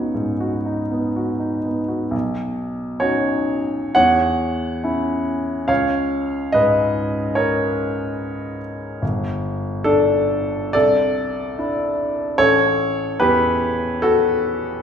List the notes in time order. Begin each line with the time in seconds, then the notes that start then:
Already playing: C#2 B3 D#4 F#4 C#5
0.14 G#2
0.40 F#4
0.66 D#4
0.91 B3
1.16 F#4
1.39 D#4
1.66 B3
1.88 F#4
2.11 B1
3.00 C#4 D#4 F#4 C#5
3.95 E2 C#5 F#5
4.84 C#4 E4
5.68 C#2 C#5 F5
6.52 G#2 B4 D#5
7.35 A#4 C#5
9.02 G1
9.84 D4 A4
10.73 C2 A4 D5
11.59 D4 E4
12.38 A1 A4 C#5
13.20 E2 G4 B4
14.02 F#4 A4